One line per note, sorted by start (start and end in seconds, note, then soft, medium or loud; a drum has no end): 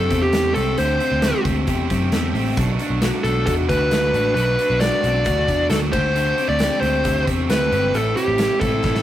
0.00 0.10 D3 medium
0.00 0.77 D3 medium
0.00 0.32 G3 medium
0.00 0.11 A3 medium
0.00 0.10 C4 medium
0.00 1.21 G4 medium
0.00 0.22 A4 loud
0.10 0.30 E2 medium
0.10 0.32 A3 soft
0.10 0.32 C4 soft
0.10 0.33 G4 medium
0.10 kick medium
0.10 closed hi-hat medium
0.22 0.54 G4 medium
0.32 0.52 E2 medium
0.32 0.55 D3 medium
0.32 0.56 A3 medium
0.32 0.55 C4 medium
0.32 0.53 G4 medium
0.32 snare loud
0.32 closed hi-hat medium
0.54 0.75 C2 medium
0.54 0.77 A3 soft
0.54 0.77 C4 soft
0.54 0.77 G4 medium
0.54 0.76 A4 medium
0.54 closed hi-hat medium
0.77 0.97 D2 loud
0.77 1.00 D3 medium
0.77 1.00 A3 medium
0.77 0.99 C4 medium
0.77 0.97 G4 medium
0.77 1.41 C5 medium
0.77 closed hi-hat medium
0.98 1.21 A3 soft
0.98 1.22 C4 medium
0.98 1.22 G4 medium
0.98 closed hi-hat medium
1.12 1.31 D2 medium
1.21 1.45 D3 medium
1.21 1.45 A3 medium
1.21 1.44 C4 medium
1.21 1.43 G4 medium
1.21 snare loud
1.21 closed hi-hat medium
1.44 1.64 D2 medium
1.44 1.66 A3 soft
1.44 1.67 C4 medium
1.44 1.67 G4 medium
1.44 kick loud
1.44 closed hi-hat medium
1.67 1.87 E2 medium
1.67 1.90 D3 medium
1.67 1.90 A3 medium
1.67 1.89 C4 medium
1.67 1.88 G4 loud
1.67 kick medium
1.67 closed hi-hat medium
1.89 2.09 F#2 medium
1.89 2.11 A3 medium
1.89 2.12 C4 medium
1.89 2.12 G4 medium
1.89 kick medium
1.89 closed hi-hat medium
2.11 2.31 E2 medium
2.11 2.34 D3 medium
2.11 2.35 A3 medium
2.11 2.34 C4 medium
2.11 2.33 G4 medium
2.11 snare medium
2.11 closed hi-hat medium
2.34 2.53 A1 medium
2.34 2.56 A3 soft
2.34 2.58 C4 medium
2.34 2.57 G4 medium
2.34 open hi-hat medium
2.56 2.76 B1 loud
2.56 2.79 B2 medium
2.56 2.80 F#3 medium
2.56 2.80 A3 medium
2.56 2.79 D4 loud
2.56 2.77 F#4 medium
2.56 kick loud
2.56 closed hi-hat medium
2.56 tambourine soft
2.79 3.01 A3 medium
2.79 3.02 D4 medium
2.79 3.02 F#4 medium
2.79 closed hi-hat medium
2.79 tambourine soft
2.90 3.09 B1 medium
3.01 3.24 F#3 medium
3.01 3.24 A3 medium
3.01 3.24 D4 medium
3.01 3.22 F#4 medium
3.01 snare loud
3.01 closed hi-hat medium
3.01 tambourine medium
3.23 3.43 B1 medium
3.23 3.47 A3 soft
3.23 3.47 D4 soft
3.23 3.46 F#4 medium
3.23 3.45 A4 medium
3.23 closed hi-hat medium
3.23 tambourine soft
3.46 3.66 E2 loud
3.46 3.69 B2 medium
3.46 3.69 F#3 medium
3.46 3.70 A3 medium
3.46 3.70 D4 medium
3.46 3.68 F#4 medium
3.46 3.52 A4 medium
3.46 kick medium
3.46 closed hi-hat medium
3.46 tambourine medium
3.69 3.88 D2 medium
3.69 3.91 A3 soft
3.69 3.92 D4 soft
3.69 3.92 F#4 medium
3.69 4.33 B4 medium
3.69 kick medium
3.69 closed hi-hat medium
3.69 tambourine soft
3.91 4.11 D2 loud
3.91 4.14 F#3 medium
3.91 4.14 A3 medium
3.91 4.14 D4 medium
3.91 4.12 F#4 medium
3.91 snare medium
3.91 closed hi-hat medium
3.91 tambourine medium
4.14 4.33 A1 medium
4.14 4.36 A3 soft
4.14 4.37 D4 soft
4.14 4.36 F#4 medium
4.14 closed hi-hat medium
4.14 tambourine medium
4.34 4.55 B1 medium
4.34 4.58 B2 medium
4.34 4.59 F#3 medium
4.34 4.59 A3 medium
4.34 4.59 D4 medium
4.34 4.57 F#4 medium
4.34 4.80 B4 loud
4.34 closed hi-hat medium
4.34 tambourine soft
4.59 4.81 A3 soft
4.59 4.82 D4 medium
4.59 4.81 F#4 medium
4.59 closed hi-hat medium
4.59 tambourine medium
4.70 4.89 B1 medium
4.80 5.03 F#3 medium
4.80 5.04 A3 medium
4.80 5.03 D4 medium
4.80 5.66 D5 loud
4.80 snare loud
4.80 closed hi-hat medium
4.80 tambourine medium
4.85 5.02 F#4 medium
5.03 5.23 B1 loud
5.03 5.25 A3 soft
5.03 5.14 C4 medium
5.03 5.25 D4 medium
5.03 5.25 F#4 medium
5.03 closed hi-hat medium
5.03 tambourine soft
5.14 5.47 D4 medium
5.25 5.45 D2 medium
5.25 5.48 B2 medium
5.25 5.48 F#3 medium
5.25 5.48 A3 medium
5.25 5.47 D4 loud
5.25 5.45 F#4 loud
5.25 kick medium
5.25 closed hi-hat medium
5.25 tambourine medium
5.46 5.67 E2 medium
5.46 5.70 A3 medium
5.46 5.71 D4 medium
5.46 5.70 F#4 medium
5.46 kick medium
5.46 closed hi-hat medium
5.46 tambourine soft
5.70 5.89 D2 medium
5.70 5.92 F#3 medium
5.70 5.93 A3 medium
5.70 5.94 D4 medium
5.70 5.92 F#4 medium
5.70 5.76 A4 medium
5.70 snare medium
5.70 closed hi-hat medium
5.70 tambourine medium
5.92 6.31 D2 medium
5.92 6.15 D3 medium
5.92 6.15 A3 soft
5.92 6.16 C4 soft
5.92 6.15 G4 medium
5.92 6.48 C5 loud
5.92 kick loud
5.92 tambourine medium
5.92 crash medium
6.15 6.38 D3 medium
6.15 6.38 A3 medium
6.15 6.39 C4 medium
6.15 6.37 G4 medium
6.15 closed hi-hat medium
6.38 6.60 A3 soft
6.38 6.61 C4 medium
6.38 6.60 G4 medium
6.38 closed hi-hat medium
6.38 tambourine medium
6.49 6.68 D2 medium
6.49 6.80 D5 loud
6.59 6.82 D3 medium
6.59 6.83 A3 medium
6.59 6.82 C4 medium
6.59 snare loud
6.59 closed hi-hat loud
6.59 tambourine medium
6.63 6.81 G4 medium
6.80 7.01 D2 medium
6.80 7.04 C4 medium
6.80 7.04 G4 medium
6.80 7.23 C5 medium
6.80 closed hi-hat medium
6.85 7.04 A3 soft
7.04 7.24 D2 medium
7.04 7.27 D3 medium
7.04 7.27 A3 medium
7.04 7.27 C4 medium
7.04 7.25 G4 medium
7.04 kick medium
7.04 closed hi-hat medium
7.04 tambourine medium
7.26 7.46 E2 medium
7.26 7.49 A3 soft
7.26 7.50 C4 soft
7.26 7.49 G4 medium
7.26 kick medium
7.26 closed hi-hat medium
7.26 tambourine soft
7.49 7.68 D2 medium
7.49 7.71 D3 medium
7.49 7.72 A3 medium
7.49 7.72 C4 medium
7.49 7.70 G4 medium
7.49 7.96 B4 loud
7.49 snare loud
7.49 closed hi-hat medium
7.49 tambourine medium
7.71 7.91 G1 medium
7.71 7.95 A3 soft
7.71 7.94 C4 soft
7.71 7.94 G4 medium
7.71 closed hi-hat medium
7.71 tambourine medium
7.93 8.13 A1 loud
7.93 8.16 A2 medium
7.93 8.17 E3 medium
7.93 8.17 G3 medium
7.93 8.16 C4 medium
7.93 8.14 E4 medium
7.93 8.16 A4 medium
7.93 closed hi-hat medium
7.93 tambourine soft
8.15 8.38 G3 soft
8.15 8.39 C4 soft
8.15 8.38 E4 medium
8.15 8.60 G4 medium
8.15 closed hi-hat medium
8.15 tambourine medium
8.28 8.47 A1 medium
8.38 8.61 E3 medium
8.38 8.62 G3 medium
8.38 8.61 C4 medium
8.38 8.59 E4 medium
8.38 snare loud
8.38 closed hi-hat medium
8.38 tambourine medium
8.60 8.81 A1 medium
8.60 8.83 G3 soft
8.60 8.84 C4 medium
8.60 8.83 E4 medium
8.60 9.02 A4 medium
8.60 kick loud
8.60 closed hi-hat medium
8.60 tambourine soft
8.83 9.02 A1 medium
8.83 9.02 A2 medium
8.83 9.02 E3 medium
8.83 9.02 G3 medium
8.83 9.02 C4 medium
8.83 9.02 E4 medium
8.83 kick medium
8.83 snare medium
8.83 tambourine medium
8.95 snare medium